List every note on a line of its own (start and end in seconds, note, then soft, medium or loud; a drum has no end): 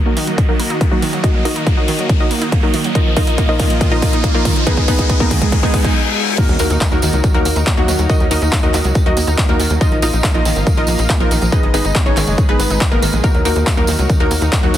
0.00 2.92 D#3 medium
0.00 4.63 A#3 medium
0.00 2.92 F#4 medium
0.00 6.34 D#5 medium
0.00 riser medium
0.06 0.08 F#3 medium
0.06 0.39 A#3 medium
0.06 0.39 D#4 medium
0.06 0.39 F#4 medium
0.06 0.39 A#4 medium
0.17 0.21 D#3 loud
0.17 open hi-hat loud
0.27 0.30 F#3 medium
0.27 closed hi-hat medium
0.38 0.44 D#3 medium
0.38 kick loud
0.38 closed hi-hat medium
0.49 0.53 F#3 medium
0.49 0.82 A#3 medium
0.49 0.82 D#4 medium
0.49 0.82 F#4 medium
0.49 0.82 A#4 medium
0.59 0.62 A#3 medium
0.59 open hi-hat loud
0.70 0.76 D#4 medium
0.70 closed hi-hat medium
0.81 0.87 A#3 medium
0.81 kick loud
0.81 closed hi-hat medium
0.91 1.17 F#3 medium
0.91 0.94 F#3 medium
0.91 1.17 A#3 medium
0.91 1.17 D#4 medium
0.91 1.17 F#4 medium
1.02 1.06 D#3 loud
1.02 open hi-hat medium
1.13 1.16 F#3 medium
1.13 closed hi-hat medium
1.24 1.30 D#3 medium
1.24 1.40 D#4 medium
1.24 1.40 F#4 medium
1.24 1.40 A#4 medium
1.24 1.41 D#5 loud
1.24 kick loud
1.24 closed hi-hat medium
1.34 1.39 F#3 medium
1.45 1.48 A#3 medium
1.45 1.70 D#4 medium
1.45 1.70 F#4 medium
1.45 1.70 A#4 medium
1.45 1.70 D#5 medium
1.45 open hi-hat loud
1.56 1.62 D#4 medium
1.56 closed hi-hat medium
1.67 1.73 A#3 medium
1.67 kick loud
1.67 closed hi-hat medium
1.77 1.80 F#3 medium
1.77 2.11 D#4 medium
1.77 2.11 F#4 medium
1.77 2.11 A#4 medium
1.77 2.11 D#5 medium
1.88 1.92 D#3 loud
1.88 open hi-hat loud
1.99 2.01 F#3 medium
1.99 closed hi-hat medium
2.09 2.16 D#3 medium
2.09 kick loud
2.09 closed hi-hat medium
2.20 2.24 F#3 medium
2.20 2.54 D#4 medium
2.20 2.54 F#4 medium
2.20 2.54 A#4 medium
2.20 2.54 D#5 medium
2.31 2.33 A#3 medium
2.31 open hi-hat loud
2.42 2.48 D#4 medium
2.42 closed hi-hat medium
2.52 2.58 A#3 medium
2.52 kick loud
2.52 closed hi-hat medium
2.63 2.66 F#3 medium
2.63 2.88 A#3 medium
2.63 2.88 D#4 medium
2.63 2.88 F#4 medium
2.63 2.88 A#4 medium
2.74 2.78 D#3 loud
2.74 open hi-hat loud
2.84 2.87 F#3 medium
2.84 closed hi-hat medium
2.95 4.65 A#2 medium
2.95 3.01 D#3 medium
2.95 3.12 D#4 medium
2.95 3.12 F4 medium
2.95 4.65 F4 medium
2.95 3.12 A#4 medium
2.95 3.12 D#5 loud
2.95 kick loud
2.95 closed hi-hat medium
3.06 3.10 F3 medium
3.17 3.19 A#3 medium
3.17 3.42 D#4 medium
3.17 3.42 F4 medium
3.17 3.42 A#4 medium
3.17 3.42 D#5 loud
3.17 kick loud
3.17 open hi-hat loud
3.27 3.33 D#4 medium
3.27 closed hi-hat medium
3.38 3.44 A#3 medium
3.38 kick loud
3.38 closed hi-hat medium
3.49 3.51 F3 medium
3.49 3.82 D#4 medium
3.49 3.82 F4 medium
3.49 3.82 A#4 medium
3.49 3.82 D#5 medium
3.59 3.64 D#3 loud
3.59 kick loud
3.59 open hi-hat loud
3.70 3.73 F3 medium
3.70 closed hi-hat medium
3.81 3.87 D#3 medium
3.81 kick loud
3.81 closed hi-hat medium
3.91 3.96 F3 medium
3.91 4.25 D#4 medium
3.91 4.25 F4 medium
3.91 4.25 A#4 medium
3.91 4.25 D#5 loud
4.02 4.05 A#3 medium
4.02 kick loud
4.02 open hi-hat loud
4.13 4.19 D#4 medium
4.13 closed hi-hat medium
4.24 4.30 A#3 medium
4.24 kick loud
4.24 closed hi-hat medium
4.34 4.37 F3 medium
4.34 4.60 A#3 medium
4.34 4.60 D#4 medium
4.34 4.60 F4 medium
4.34 4.60 A#4 medium
4.45 4.49 D#3 loud
4.45 kick loud
4.45 open hi-hat loud
4.56 4.58 F3 medium
4.56 closed hi-hat medium
4.67 4.73 D#3 medium
4.67 6.37 G#3 medium
4.67 4.83 B3 medium
4.67 4.83 D#4 medium
4.67 4.83 G#4 medium
4.67 6.37 G#4 medium
4.67 4.83 B4 loud
4.67 kick loud
4.67 closed hi-hat medium
4.77 4.81 G#3 medium
4.77 kick loud
4.88 4.91 B3 medium
4.88 5.13 B3 medium
4.88 5.13 D#4 medium
4.88 5.13 G#4 medium
4.88 5.13 B4 medium
4.88 kick loud
4.88 open hi-hat loud
4.99 5.05 D#4 medium
4.99 kick medium
4.99 closed hi-hat medium
5.09 5.16 B3 medium
5.09 kick loud
5.09 closed hi-hat medium
5.20 5.23 G#3 medium
5.20 5.54 A#3 medium
5.20 5.54 B3 medium
5.20 5.54 D#4 medium
5.20 5.54 A#4 medium
5.20 kick loud
5.31 5.35 D#3 loud
5.31 kick loud
5.31 open hi-hat loud
5.42 5.44 G#3 medium
5.42 kick medium
5.42 closed hi-hat medium
5.52 5.58 D#3 medium
5.52 kick loud
5.52 closed hi-hat medium
5.52 reverse cymbal medium
5.63 5.67 G#3 medium
5.63 5.95 G#3 medium
5.63 5.95 B3 medium
5.63 5.95 D#4 medium
5.63 5.95 G#4 medium
5.63 kick medium
5.74 5.76 B3 medium
5.74 kick loud
5.74 open hi-hat loud
5.84 5.91 D#4 medium
5.84 kick loud
5.84 closed hi-hat medium
6.38 6.44 D#3 medium
6.38 6.55 A#3 medium
6.38 6.55 D#4 medium
6.38 9.78 D#4 medium
6.38 6.55 F#4 medium
6.38 9.78 F#4 medium
6.38 6.55 A#4 loud
6.38 9.78 A#4 medium
6.38 kick loud
6.38 closed hi-hat medium
6.38 crash loud
6.38 tambourine soft
6.38 impact medium
6.49 6.57 D#2 medium
6.49 6.53 F#3 medium
6.49 closed hi-hat soft
6.59 6.68 D#2 loud
6.59 6.62 A#3 medium
6.59 6.85 A#3 medium
6.59 6.85 D#4 medium
6.59 6.85 F#4 medium
6.59 6.85 A#4 medium
6.59 6.85 A#4 loud
6.59 open hi-hat loud
6.59 tambourine medium
6.70 6.78 D#2 medium
6.70 6.76 D#4 medium
6.70 closed hi-hat medium
6.70 tambourine soft
6.81 6.87 A#3 medium
6.81 kick loud
6.81 clap loud
6.81 closed hi-hat medium
6.81 tambourine soft
6.92 7.00 D#2 medium
6.92 6.94 F#3 medium
6.92 7.25 A#3 medium
6.92 7.25 D#4 medium
6.92 7.25 F#4 medium
6.92 7.25 A#4 medium
6.92 closed hi-hat soft
7.02 7.11 D#2 loud
7.02 7.07 D#3 loud
7.02 open hi-hat loud
7.02 tambourine loud
7.13 7.21 C#2 medium
7.13 7.16 F#3 medium
7.13 closed hi-hat medium
7.13 tambourine soft
7.24 7.30 D#3 medium
7.24 kick loud
7.24 closed hi-hat medium
7.24 tambourine soft
7.34 7.43 D#2 medium
7.34 7.39 F#3 medium
7.34 7.68 A#3 medium
7.34 7.68 D#4 medium
7.34 7.68 F#4 medium
7.34 7.68 A#4 medium
7.34 closed hi-hat soft
7.45 7.53 D#2 loud
7.45 7.48 A#3 medium
7.45 open hi-hat loud
7.45 tambourine medium
7.56 7.64 D#2 medium
7.56 7.62 D#4 medium
7.56 closed hi-hat medium
7.56 tambourine medium
7.67 7.73 A#3 medium
7.67 kick loud
7.67 clap loud
7.67 closed hi-hat medium
7.77 7.86 D#2 medium
7.77 8.03 F#3 medium
7.77 7.80 F#3 medium
7.77 8.03 A#3 medium
7.77 8.03 D#4 medium
7.77 8.03 F#4 medium
7.77 closed hi-hat soft
7.88 7.96 D#2 loud
7.88 7.92 D#3 loud
7.88 open hi-hat loud
7.88 tambourine medium
7.99 8.07 D#2 medium
7.99 8.01 F#3 medium
7.99 closed hi-hat medium
7.99 tambourine soft
8.10 8.16 D#3 medium
8.10 8.26 D#4 medium
8.10 8.26 F#4 medium
8.10 8.26 A#4 medium
8.10 8.26 D#5 loud
8.10 kick loud
8.10 closed hi-hat medium
8.10 tambourine soft
8.20 8.28 D#2 medium
8.20 8.24 F#3 medium
8.20 closed hi-hat soft
8.31 8.39 D#2 loud
8.31 8.33 A#3 medium
8.31 8.56 D#4 medium
8.31 8.56 F#4 medium
8.31 8.56 A#4 medium
8.31 8.56 D#5 medium
8.31 open hi-hat loud
8.31 tambourine loud
8.42 8.50 D#2 loud
8.42 8.48 D#4 medium
8.42 closed hi-hat medium
8.42 tambourine medium
8.52 8.58 A#3 medium
8.52 kick loud
8.52 clap loud
8.52 closed hi-hat medium
8.52 tambourine soft
8.63 8.71 D#2 medium
8.63 8.66 F#3 medium
8.63 8.97 D#4 medium
8.63 8.97 F#4 medium
8.63 8.97 A#4 medium
8.63 8.97 D#5 medium
8.63 closed hi-hat soft
8.74 8.82 D#2 loud
8.74 8.78 D#3 loud
8.74 clap medium
8.74 open hi-hat loud
8.74 tambourine loud
8.84 8.93 C#2 medium
8.84 8.87 F#3 medium
8.84 closed hi-hat medium
8.84 tambourine medium
8.95 9.01 D#3 medium
8.95 kick loud
8.95 closed hi-hat medium
8.95 tambourine soft
9.06 9.14 D#2 medium
9.06 9.10 F#3 medium
9.06 9.40 D#4 medium
9.06 9.40 F#4 medium
9.06 9.40 A#4 medium
9.06 9.40 D#5 medium
9.06 closed hi-hat soft
9.17 9.25 D#2 loud
9.17 9.19 A#3 medium
9.17 open hi-hat loud
9.17 tambourine medium
9.27 9.36 D#2 medium
9.27 9.33 D#4 medium
9.27 closed hi-hat medium
9.27 tambourine medium
9.38 9.44 A#3 medium
9.38 kick loud
9.38 clap loud
9.38 closed hi-hat medium
9.49 9.57 D#2 medium
9.49 9.51 F#3 medium
9.49 9.74 A#3 medium
9.49 9.74 D#4 medium
9.49 9.74 F#4 medium
9.49 9.74 A#4 medium
9.49 closed hi-hat soft
9.60 9.68 D#2 medium
9.60 9.64 D#3 loud
9.60 open hi-hat loud
9.60 tambourine medium
9.70 9.78 D#2 medium
9.70 9.73 F#3 medium
9.70 closed hi-hat medium
9.70 tambourine medium
9.81 9.87 D#3 medium
9.81 11.51 A#3 medium
9.81 9.98 D#4 medium
9.81 9.98 F4 medium
9.81 9.98 A#4 medium
9.81 11.51 A#4 medium
9.81 9.98 D#5 loud
9.81 13.21 D#5 medium
9.81 11.51 F5 loud
9.81 kick loud
9.81 closed hi-hat medium
9.81 tambourine soft
9.92 10.00 A#1 medium
9.92 9.96 F3 medium
9.92 closed hi-hat soft
10.02 10.11 A#1 loud
10.02 10.05 A#3 medium
10.02 10.28 D#4 medium
10.02 10.28 F4 medium
10.02 10.28 A#4 medium
10.02 10.28 D#5 medium
10.02 open hi-hat loud
10.02 tambourine loud
10.13 10.21 A#1 medium
10.13 10.19 D#4 medium
10.13 closed hi-hat medium
10.13 tambourine medium
10.24 10.30 A#3 medium
10.24 kick loud
10.24 clap loud
10.24 closed hi-hat soft
10.24 tambourine soft
10.34 10.43 A#1 medium
10.34 10.37 F3 medium
10.34 10.68 D#4 medium
10.34 10.68 F4 medium
10.34 10.68 A#4 medium
10.34 10.68 D#5 medium
10.34 closed hi-hat soft
10.45 10.53 A#1 loud
10.45 10.49 D#3 loud
10.45 open hi-hat loud
10.45 tambourine loud
10.56 10.64 G#1 medium
10.56 10.58 F3 medium
10.56 closed hi-hat medium
10.56 tambourine soft
10.67 10.73 D#3 medium
10.67 kick loud
10.67 closed hi-hat medium
10.67 tambourine soft
10.77 10.86 A#1 medium
10.77 10.81 F3 medium
10.77 11.11 D#4 medium
10.77 11.11 F4 medium
10.77 11.11 A#4 medium
10.77 11.11 D#5 medium
10.77 closed hi-hat soft
10.87 10.96 A#1 loud
10.87 10.91 A#3 medium
10.87 open hi-hat loud
10.87 tambourine medium
10.98 11.07 A#1 medium
10.98 11.05 D#4 medium
10.98 closed hi-hat medium
10.98 tambourine medium
11.10 11.16 A#3 medium
11.10 kick loud
11.10 clap loud
11.10 closed hi-hat soft
11.20 11.28 A#1 medium
11.20 11.23 F3 medium
11.20 11.46 A#3 medium
11.20 11.46 D#4 medium
11.20 11.46 F4 medium
11.20 11.45 A#4 medium
11.20 11.46 A#4 medium
11.20 closed hi-hat soft
11.31 11.39 A#1 loud
11.31 11.35 D#3 loud
11.31 open hi-hat loud
11.31 tambourine medium
11.42 11.50 A#1 medium
11.42 11.44 F3 medium
11.42 closed hi-hat soft
11.42 tambourine medium
11.52 11.58 D#3 medium
11.52 13.22 G#3 medium
11.52 11.69 D#4 medium
11.52 11.69 G#4 medium
11.52 13.22 G#4 medium
11.52 13.22 B4 medium
11.52 11.69 B4 medium
11.52 11.69 D#5 loud
11.52 kick loud
11.52 closed hi-hat soft
11.52 tambourine soft
11.63 11.71 G#1 medium
11.63 11.67 G#3 medium
11.63 closed hi-hat soft
11.74 11.82 G#1 loud
11.74 11.76 B3 medium
11.74 11.99 D#4 medium
11.74 11.99 G#4 medium
11.74 11.99 B4 medium
11.74 11.99 D#5 loud
11.74 11.99 D#5 medium
11.74 open hi-hat loud
11.74 tambourine medium
11.84 11.93 G#1 loud
11.84 11.91 D#4 medium
11.84 closed hi-hat medium
11.84 tambourine medium
11.95 12.01 B3 medium
11.95 kick loud
11.95 clap loud
11.95 closed hi-hat soft
12.06 12.14 G#1 medium
12.06 12.08 G#3 medium
12.06 12.39 C#4 medium
12.06 12.40 D#4 medium
12.06 12.39 G#4 medium
12.06 12.39 C#5 medium
12.06 12.40 C#5 medium
12.06 closed hi-hat soft
12.17 12.25 G#1 loud
12.17 12.21 D#3 loud
12.17 clap medium
12.17 open hi-hat loud
12.17 tambourine medium
12.27 12.36 F#1 medium
12.27 12.30 G#3 medium
12.27 closed hi-hat soft
12.27 tambourine soft
12.38 12.44 D#3 medium
12.38 kick loud
12.38 closed hi-hat soft
12.38 tambourine soft
12.49 12.57 G#1 medium
12.49 12.53 G#3 medium
12.49 12.82 B3 medium
12.49 12.82 D#4 medium
12.49 12.82 G#4 medium
12.49 12.82 B4 medium
12.49 12.82 B4 loud
12.49 closed hi-hat soft
12.59 12.68 G#1 loud
12.59 12.62 B3 medium
12.59 open hi-hat loud
12.59 tambourine medium
12.70 12.78 G#1 medium
12.70 12.76 D#4 medium
12.70 closed hi-hat soft
12.70 tambourine medium
12.81 12.87 B3 medium
12.81 kick loud
12.81 clap loud
12.81 closed hi-hat soft
12.81 tambourine soft
12.92 13.00 G#1 medium
12.92 12.94 G#3 medium
12.92 13.17 A#3 medium
12.92 13.17 B3 medium
12.92 13.17 D#4 medium
12.92 13.17 A#4 loud
12.92 13.17 A#4 medium
12.92 closed hi-hat soft
13.02 13.11 G#1 loud
13.02 13.06 D#3 loud
13.02 open hi-hat loud
13.02 tambourine medium
13.12 13.21 A#1 medium
13.12 13.16 G#3 medium
13.12 closed hi-hat medium
13.12 tambourine medium
13.24 13.30 D#3 medium
13.24 13.41 A#3 medium
13.24 13.40 D#4 medium
13.24 14.78 D#4 medium
13.24 13.40 F#4 medium
13.24 14.78 F#4 medium
13.24 14.78 A#4 medium
13.24 13.41 A#4 loud
13.24 kick loud
13.24 closed hi-hat soft
13.24 tambourine soft
13.34 13.43 D#2 medium
13.34 13.39 F#3 medium
13.34 closed hi-hat soft
13.45 13.53 D#2 loud
13.45 13.48 A#3 medium
13.45 13.70 A#3 medium
13.45 13.70 D#4 medium
13.45 13.70 F#4 medium
13.45 13.70 A#4 medium
13.45 open hi-hat loud
13.45 tambourine medium
13.56 13.64 D#2 loud
13.56 13.62 D#4 medium
13.56 closed hi-hat medium
13.56 tambourine medium
13.67 13.73 A#3 medium
13.67 kick loud
13.67 clap loud
13.67 closed hi-hat medium
13.67 tambourine soft
13.77 13.86 D#2 medium
13.77 13.80 F#3 medium
13.77 14.11 A#3 medium
13.77 14.11 D#4 medium
13.77 14.11 F#4 medium
13.77 14.11 A#4 medium
13.77 closed hi-hat soft
13.87 13.96 D#2 loud
13.87 13.92 D#3 loud
13.87 open hi-hat loud
13.87 tambourine loud
13.99 14.07 C#2 medium
13.99 14.01 F#3 medium
13.99 closed hi-hat soft
13.99 tambourine soft
14.09 14.16 D#3 medium
14.09 kick loud
14.09 closed hi-hat medium
14.09 tambourine soft
14.20 14.28 D#2 medium
14.20 14.24 F#3 medium
14.20 14.54 A#3 medium
14.20 14.54 D#4 medium
14.20 14.54 F#4 medium
14.20 14.54 A#4 loud
14.20 closed hi-hat soft
14.31 14.39 D#2 loud
14.31 14.33 A#3 medium
14.31 open hi-hat loud
14.31 tambourine medium
14.42 14.50 D#2 medium
14.42 14.48 D#4 medium
14.42 closed hi-hat soft
14.42 tambourine medium
14.52 14.58 A#3 medium
14.52 kick loud
14.52 clap loud
14.52 closed hi-hat medium
14.52 tambourine soft
14.63 14.71 D#2 medium
14.63 14.78 F#3 medium
14.63 14.66 F#3 medium
14.63 14.78 A#3 medium
14.63 14.78 D#4 medium
14.63 14.78 F#4 loud
14.63 14.78 F#4 medium
14.63 closed hi-hat soft
14.74 14.78 D#2 medium
14.74 14.78 D#3 loud
14.74 open hi-hat loud
14.74 tambourine loud